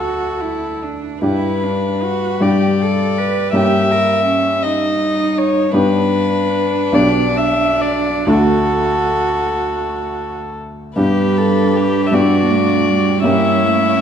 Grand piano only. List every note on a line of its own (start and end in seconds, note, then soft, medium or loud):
0.00 1.19 D2 soft
0.00 1.19 A3 soft
0.00 1.20 D4 soft
0.00 1.19 F#4 soft
1.22 2.38 G2 soft
1.22 2.38 G3 soft
1.22 2.38 D4 soft
1.22 2.38 G4 soft
2.40 3.50 G2 soft
2.40 3.51 G3 soft
2.40 3.51 D4 soft
2.40 3.51 G4 soft
3.53 5.71 G2 soft
3.53 5.71 A#3 soft
3.53 5.71 C#4 soft
3.53 5.71 G4 soft
5.73 6.90 G2 soft
5.73 6.90 B3 soft
5.73 6.90 D4 soft
5.73 6.91 G4 soft
6.92 8.23 B1 soft
6.92 8.23 B3 soft
6.92 8.23 D4 soft
6.92 8.23 G4 soft
8.26 10.94 D2 soft
8.26 10.94 A3 soft
8.26 10.94 D4 soft
8.26 10.94 F#4 soft
10.96 12.08 G2 soft
10.96 12.09 B3 soft
10.96 12.09 D4 soft
10.96 12.09 G4 soft
12.11 13.21 G2 soft
12.11 13.21 B3 soft
12.11 13.21 D4 soft
12.11 13.22 G4 soft
13.23 14.01 G2 soft
13.23 14.01 A#3 soft
13.23 14.01 C#4 soft
13.23 14.01 G4 soft